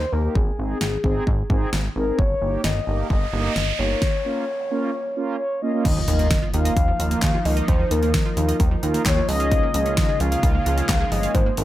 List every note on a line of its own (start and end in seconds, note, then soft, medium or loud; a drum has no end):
0.00 0.14 C5 loud
0.12 0.29 D#2 loud
0.12 0.22 A#3 medium
0.12 0.22 D#4 medium
0.12 0.22 G4 medium
0.12 0.37 A#4 medium
0.24 0.35 A#3 medium
0.24 0.35 D#4 medium
0.24 0.35 G4 medium
0.35 0.51 G#1 loud
0.35 1.73 G#4 medium
0.35 kick loud
0.58 0.74 G#1 loud
0.58 0.78 C4 medium
0.58 0.78 D#4 medium
0.58 0.78 G#4 medium
0.81 0.97 G#1 medium
0.81 snare loud
1.04 1.20 G#1 medium
1.04 1.24 C4 medium
1.04 1.24 D#4 medium
1.04 1.24 G#4 loud
1.04 kick medium
1.27 1.43 G#1 loud
1.27 kick loud
1.50 1.66 G#1 loud
1.50 1.70 C4 medium
1.50 1.70 D#4 medium
1.50 1.70 G#4 loud
1.50 kick loud
1.73 1.89 G#1 loud
1.73 snare loud
1.96 2.12 G#1 loud
1.96 2.06 C4 medium
1.96 2.06 D#4 medium
1.96 2.06 G#4 medium
1.96 2.20 A#4 medium
2.07 2.19 C4 medium
2.07 2.19 D#4 medium
2.07 2.19 G#4 medium
2.19 2.35 G1 loud
2.19 2.66 C#5 loud
2.19 kick loud
2.19 noise sweep medium
2.42 2.58 G1 medium
2.42 2.61 A#3 medium
2.42 2.61 D#4 medium
2.42 2.61 G4 medium
2.64 2.80 G1 loud
2.64 3.10 D#5 loud
2.64 snare loud
2.87 3.03 G1 medium
2.87 3.07 A#3 medium
2.87 3.07 D#4 medium
2.87 3.07 G4 medium
3.10 3.26 G1 loud
3.10 3.80 D#5 loud
3.10 kick medium
3.33 3.49 G1 loud
3.33 3.53 A#3 medium
3.33 3.53 D#4 medium
3.33 3.53 G4 medium
3.56 3.72 G1 loud
3.56 snare loud
3.79 3.95 G1 loud
3.79 3.89 A#3 medium
3.79 3.89 D#4 medium
3.79 3.89 G4 medium
3.79 5.39 C#5 loud
3.90 4.02 A#3 medium
3.90 4.02 D#4 medium
3.90 4.02 F4 medium
4.02 kick loud
4.02 snare medium
4.25 4.44 A#3 medium
4.25 4.44 C#4 medium
4.25 4.44 F4 medium
4.70 4.90 A#3 medium
4.70 4.90 C#4 medium
4.70 4.90 F4 medium
5.16 5.36 A#3 medium
5.16 5.36 C#4 medium
5.16 5.36 F4 loud
5.39 5.61 C#5 medium
5.62 5.72 A#3 medium
5.62 5.72 C#4 medium
5.62 5.72 F4 medium
5.62 6.50 D#5 loud
5.73 5.85 A#3 medium
5.73 5.85 C#4 medium
5.73 5.85 F4 medium
5.85 6.01 D#2 loud
5.85 5.95 D#3 medium
5.85 9.25 F3 medium
5.85 11.64 A#3 medium
5.85 11.31 D#4 medium
5.85 kick loud
5.85 closed hi-hat medium
5.85 crash loud
5.85 impact medium
5.96 6.07 F3 medium
6.08 6.32 D#2 loud
6.08 6.18 D#3 medium
6.08 6.28 A#3 medium
6.08 6.28 D#4 medium
6.08 6.28 F4 medium
6.08 closed hi-hat medium
6.19 6.30 A#3 medium
6.19 closed hi-hat soft
6.31 6.41 D#3 medium
6.31 kick loud
6.31 snare loud
6.31 closed hi-hat medium
6.42 6.52 F4 medium
6.54 6.70 D#2 loud
6.54 6.64 D#3 medium
6.54 6.74 A#3 medium
6.54 6.74 D#4 medium
6.54 6.74 F4 medium
6.54 7.47 F5 loud
6.54 closed hi-hat medium
6.65 6.75 D#5 medium
6.65 closed hi-hat medium
6.77 6.93 D#2 loud
6.77 kick loud
6.77 closed hi-hat medium
6.88 6.98 F3 medium
6.99 7.16 D#2 medium
6.99 7.10 D#3 medium
6.99 7.19 A#3 medium
6.99 7.19 D#4 medium
6.99 7.19 F4 medium
6.99 closed hi-hat medium
7.11 7.21 A#3 medium
7.11 closed hi-hat medium
7.22 7.38 D#2 loud
7.22 7.33 D#3 medium
7.22 kick loud
7.22 snare loud
7.22 clap medium
7.22 closed hi-hat medium
7.34 7.44 F4 medium
7.45 7.61 C#2 loud
7.45 7.56 D#3 medium
7.45 7.65 A#3 medium
7.45 7.65 D#4 medium
7.45 7.65 F4 medium
7.45 7.70 D#5 loud
7.45 open hi-hat medium
7.57 7.67 D#5 medium
7.57 closed hi-hat medium
7.68 7.84 D#2 loud
7.68 7.78 D#3 loud
7.68 7.93 C5 loud
7.68 kick loud
7.68 closed hi-hat medium
7.80 7.90 F3 medium
7.91 8.15 D#2 loud
7.91 8.01 D#3 medium
7.91 8.11 A#3 medium
7.91 8.11 D#4 medium
7.91 8.11 F4 medium
7.91 8.60 A#4 medium
7.91 closed hi-hat medium
8.03 8.13 A#3 medium
8.03 closed hi-hat soft
8.14 8.24 D#3 medium
8.14 kick loud
8.14 snare loud
8.14 closed hi-hat medium
8.26 8.36 F4 medium
8.37 8.53 D#2 loud
8.37 8.47 D#3 medium
8.37 8.57 A#3 medium
8.37 8.57 D#4 medium
8.37 8.57 F4 medium
8.37 closed hi-hat medium
8.48 8.59 D#5 medium
8.48 closed hi-hat medium
8.60 8.76 D#2 loud
8.60 kick loud
8.60 closed hi-hat medium
8.71 8.82 F3 medium
8.83 8.99 D#2 loud
8.83 8.93 D#3 medium
8.83 9.03 A#3 loud
8.83 9.03 D#4 medium
8.83 9.03 F4 loud
8.83 closed hi-hat medium
8.94 9.04 A#3 medium
8.94 closed hi-hat medium
9.06 9.22 D#2 loud
9.06 9.16 D#3 medium
9.06 9.27 C#5 loud
9.06 kick loud
9.06 snare loud
9.06 clap medium
9.06 closed hi-hat medium
9.17 9.27 F4 medium
9.28 9.61 C#2 loud
9.28 11.33 C#3 medium
9.28 9.39 F3 medium
9.28 11.64 G#3 medium
9.28 9.68 C#4 medium
9.28 9.68 F4 medium
9.28 11.33 F4 medium
9.28 9.68 G#4 medium
9.28 10.21 D#5 loud
9.28 open hi-hat medium
9.40 9.50 F5 medium
9.40 closed hi-hat medium
9.51 9.62 F3 medium
9.51 kick loud
9.51 closed hi-hat medium
9.63 9.73 A#3 medium
9.74 9.98 C#2 loud
9.74 9.85 F3 medium
9.74 9.94 C#4 medium
9.74 9.94 F4 medium
9.74 9.94 G#4 medium
9.74 closed hi-hat medium
9.86 9.96 C#4 medium
9.86 closed hi-hat soft
9.97 10.08 F3 medium
9.97 kick loud
9.97 snare loud
9.97 closed hi-hat medium
10.09 10.19 G#4 medium
10.20 10.36 C#2 loud
10.20 10.30 F3 medium
10.20 10.40 C#4 medium
10.20 10.40 F4 medium
10.20 10.40 G#4 medium
10.20 11.13 F5 loud
10.20 closed hi-hat medium
10.32 10.42 F5 medium
10.32 closed hi-hat medium
10.43 10.59 C#2 loud
10.43 kick loud
10.43 closed hi-hat medium
10.55 10.65 A#3 medium
10.66 10.82 C#2 loud
10.66 10.76 F3 medium
10.66 10.86 C#4 medium
10.66 10.86 F4 medium
10.66 10.86 G#4 medium
10.66 closed hi-hat medium
10.78 10.88 C#4 medium
10.78 closed hi-hat medium
10.89 11.05 C#2 loud
10.89 10.99 F3 medium
10.89 kick loud
10.89 snare loud
10.89 clap medium
10.89 closed hi-hat medium
11.00 11.11 G#4 medium
11.12 11.28 G1 medium
11.12 11.22 F3 medium
11.12 11.32 C#4 medium
11.12 11.32 F4 medium
11.12 11.32 G#4 medium
11.12 11.36 D#5 loud
11.12 open hi-hat medium
11.23 11.34 F5 medium
11.23 closed hi-hat medium
11.34 11.51 G#1 loud
11.34 11.45 D#3 medium
11.34 11.64 C4 medium
11.34 11.59 C5 loud
11.34 kick loud
11.34 closed hi-hat medium
11.46 11.56 A#3 medium
11.57 11.64 G#1 loud
11.57 11.64 D#3 medium
11.57 11.64 C4 medium
11.57 11.64 D#4 medium
11.57 11.64 G#4 medium
11.57 11.64 A#4 medium
11.57 closed hi-hat medium